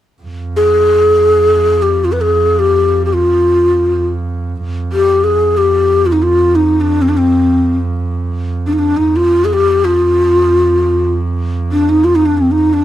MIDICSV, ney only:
0, 0, Header, 1, 2, 480
1, 0, Start_track
1, 0, Tempo, 500000
1, 12331, End_track
2, 0, Start_track
2, 0, Title_t, "Ney"
2, 0, Program_c, 0, 77
2, 540, Note_on_c, 0, 68, 86
2, 1749, Note_on_c, 0, 67, 68
2, 1763, Note_off_c, 0, 68, 0
2, 1962, Note_on_c, 0, 65, 60
2, 1977, Note_off_c, 0, 67, 0
2, 2036, Note_on_c, 0, 71, 53
2, 2050, Note_off_c, 0, 65, 0
2, 2130, Note_on_c, 0, 68, 72
2, 2144, Note_off_c, 0, 71, 0
2, 2490, Note_on_c, 0, 67, 76
2, 2504, Note_off_c, 0, 68, 0
2, 2926, Note_off_c, 0, 67, 0
2, 2932, Note_on_c, 0, 67, 43
2, 3005, Note_on_c, 0, 65, 63
2, 3020, Note_off_c, 0, 67, 0
2, 3916, Note_off_c, 0, 65, 0
2, 4727, Note_on_c, 0, 67, 76
2, 5028, Note_on_c, 0, 68, 70
2, 5042, Note_off_c, 0, 67, 0
2, 5349, Note_on_c, 0, 67, 68
2, 5363, Note_off_c, 0, 68, 0
2, 5819, Note_on_c, 0, 65, 70
2, 5833, Note_off_c, 0, 67, 0
2, 5878, Note_on_c, 0, 63, 58
2, 5893, Note_off_c, 0, 65, 0
2, 5975, Note_on_c, 0, 65, 71
2, 5989, Note_off_c, 0, 63, 0
2, 6291, Note_on_c, 0, 63, 65
2, 6305, Note_off_c, 0, 65, 0
2, 6536, Note_on_c, 0, 62, 60
2, 6550, Note_off_c, 0, 63, 0
2, 6738, Note_on_c, 0, 60, 59
2, 6752, Note_off_c, 0, 62, 0
2, 6804, Note_on_c, 0, 62, 52
2, 6819, Note_off_c, 0, 60, 0
2, 6885, Note_on_c, 0, 60, 61
2, 6899, Note_off_c, 0, 62, 0
2, 7458, Note_off_c, 0, 60, 0
2, 8319, Note_on_c, 0, 62, 59
2, 8380, Note_on_c, 0, 63, 48
2, 8394, Note_off_c, 0, 62, 0
2, 8436, Note_on_c, 0, 62, 62
2, 8450, Note_off_c, 0, 63, 0
2, 8610, Note_on_c, 0, 63, 68
2, 8625, Note_off_c, 0, 62, 0
2, 8794, Note_on_c, 0, 65, 78
2, 8809, Note_off_c, 0, 63, 0
2, 9068, Note_on_c, 0, 68, 55
2, 9083, Note_off_c, 0, 65, 0
2, 9152, Note_on_c, 0, 67, 72
2, 9166, Note_off_c, 0, 68, 0
2, 9452, Note_on_c, 0, 65, 75
2, 9467, Note_off_c, 0, 67, 0
2, 10671, Note_off_c, 0, 65, 0
2, 11251, Note_on_c, 0, 62, 68
2, 11416, Note_on_c, 0, 63, 68
2, 11430, Note_off_c, 0, 62, 0
2, 11560, Note_on_c, 0, 65, 74
2, 11575, Note_off_c, 0, 63, 0
2, 11667, Note_on_c, 0, 63, 70
2, 11681, Note_off_c, 0, 65, 0
2, 11768, Note_on_c, 0, 62, 75
2, 11782, Note_off_c, 0, 63, 0
2, 11879, Note_on_c, 0, 60, 67
2, 11893, Note_off_c, 0, 62, 0
2, 12013, Note_on_c, 0, 63, 75
2, 12027, Note_off_c, 0, 60, 0
2, 12225, Note_on_c, 0, 62, 69
2, 12239, Note_off_c, 0, 63, 0
2, 12331, Note_off_c, 0, 62, 0
2, 12331, End_track
0, 0, End_of_file